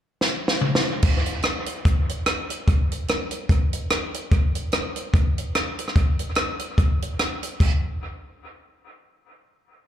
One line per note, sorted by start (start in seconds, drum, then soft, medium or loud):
0.21 snare medium
0.48 snare medium
0.61 mid tom medium
0.75 snare loud
1.03 kick loud
1.03 crash medium
1.26 closed hi-hat medium
1.42 cross-stick loud
1.42 closed hi-hat medium
1.66 closed hi-hat medium
1.85 kick loud
1.85 closed hi-hat medium
2.09 closed hi-hat medium
2.26 cross-stick loud
2.26 closed hi-hat medium
2.50 closed hi-hat medium
2.68 kick loud
2.68 closed hi-hat medium
2.92 closed hi-hat medium
3.08 cross-stick loud
3.08 closed hi-hat medium
3.31 closed hi-hat medium
3.49 kick loud
3.49 closed hi-hat medium
3.73 closed hi-hat medium
3.90 cross-stick loud
3.90 closed hi-hat medium
4.14 closed hi-hat medium
4.31 kick loud
4.31 closed hi-hat medium
4.55 closed hi-hat medium
4.72 cross-stick loud
4.72 closed hi-hat medium
4.96 closed hi-hat medium
5.14 kick loud
5.14 closed hi-hat medium
5.38 closed hi-hat medium
5.55 cross-stick loud
5.55 closed hi-hat medium
5.79 closed hi-hat medium
5.88 cross-stick medium
5.96 kick loud
5.96 closed hi-hat medium
6.19 closed hi-hat medium
6.35 cross-stick loud
6.35 closed hi-hat medium
6.59 closed hi-hat medium
6.78 kick loud
6.78 closed hi-hat medium
7.02 closed hi-hat medium
7.19 cross-stick loud
7.19 closed hi-hat medium
7.43 closed hi-hat medium
7.60 kick loud
7.60 crash medium